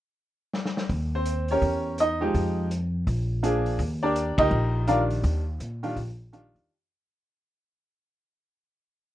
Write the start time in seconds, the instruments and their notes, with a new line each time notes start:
0.53 snare
0.65 snare
0.77 snare
0.89 upright bass D#2, kick, open hi-hat
1.15 upright piano C4 C5
1.26 closed hi-hat
1.48 upright piano C#4 G4 A#4 C#5, open hi-hat
1.62 upright bass E2, kick, open hi-hat
1.98 upright piano D#4 D#5, closed hi-hat
2.21 upright piano F3 G#3 D#4 G4
2.34 upright bass F2, kick, open hi-hat
2.71 closed hi-hat
3.07 upright bass A#1, kick, open hi-hat
3.43 upright piano F3 A#3 D4 G#4, closed hi-hat
3.66 open hi-hat
3.79 upright bass D#2, kick, open hi-hat
4.03 upright piano D4 G4 A#4 D5
4.16 closed hi-hat
4.38 upright bass D2, upright piano D#4 G4 A#4 D#5, kick, ride
4.51 upright bass A#1
4.88 upright piano D#3 G3 D4 F4 A#4 D5 F5, closed hi-hat
5.10 open hi-hat
5.23 upright bass D#2, kick, open hi-hat
5.60 upright bass A#2, closed hi-hat
5.83 upright piano D#3 G3 D4 F4, open hi-hat
5.96 upright bass A#1, kick, open hi-hat
6.33 upright piano D#3 G3 D4 F4, closed hi-hat
6.55 upright bass E2, open hi-hat